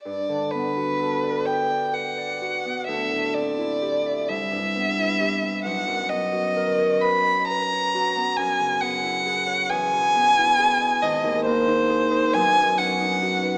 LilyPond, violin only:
\new Staff \with { instrumentName = "Violin" } { \time 6/8 \key g \major \tempo 4. = 44 d''8 b'4 g''8 fis''4 | e''8 d''4 e''4. | fis''8 dis''4 b''8 ais''4 | gis''8 fis''4 gis''4. |
\key aes \lydian ees''8 c''4 aes''8 fis''4 | }